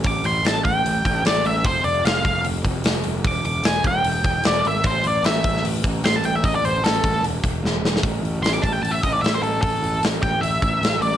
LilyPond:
<<
  \new Staff \with { instrumentName = "Lead electric guitar" } { \time 4/4 \key a \minor \tempo 4 = 150 d'''8 c'''8 a''8 g''4. d''8 e''8 | c''8 d''8 f''4 r2 | d'''8 d'''8 gis''8 g''4. d''8 e''8 | c''8 d''8 e''4 r4 c'''16 a''16 g''16 e''16 |
dis''16 d''16 c''8 a'4 r2 | r4 c'''16 d'''16 a''16 g''16 a''16 e''16 dis''16 d''16 e''16 c''16 a'8 | a'4 r8 g''8 e''4. d''8 | }
  \new Staff \with { instrumentName = "Picked electric bass" } { \clef bass \time 4/4 \key a \minor a,,8 a,,8 a,,8 a,,8 a,,8 a,,8 a,,8 a,,8 | f,,8 f,,8 f,,8 f,,8 f,,8 f,,8 f,,8 f,,8 | e,,8 e,,8 e,,8 e,,8 e,,8 e,,8 e,,8 gis,,8 | a,,8 a,,8 a,,8 a,,8 a,,8 a,,8 a,,8 a,,8 |
a,,8 a,,8 a,,8 a,,8 e,,8 e,,8 e,,8 e,,8 | a,,8 a,,8 a,,8 a,,8 a,,8 a,,8 a,,8 a,,8 | a,,8 a,,8 a,,8 a,,8 a,,8 a,,8 a,,8 a,,8 | }
  \new DrumStaff \with { instrumentName = "Drums" } \drummode { \time 4/4 <hho bd>8 hho8 <hho sn>8 <hho bd>8 hho8 <hho bd>8 <hho sn>8 hho8 | <hho bd>8 hho8 <hho sn>8 <hho bd>8 hho8 <hho bd>8 <hho sn>8 hho8 | <hho bd>8 hho8 <hho sn>8 <hho bd>8 hho8 <hho bd>8 <hho sn>8 hho8 | <hho bd>8 hho8 <hho sn>8 <hho bd>16 sn16 hho8 <hho bd>8 <hho sn>8 hho8 |
<hho bd>8 hho8 <hho sn>8 <hho bd>8 hho8 <hho bd>8 sn8 sn16 sn16 | <hho bd>8 hho8 <hho sn>8 <hho bd>8 hho8 <hho bd>8 <hho sn>8 hho8 | <hho bd>8 hho8 <hho sn>8 <hho bd>8 hho8 <hho bd>8 <hho sn>8 hho8 | }
>>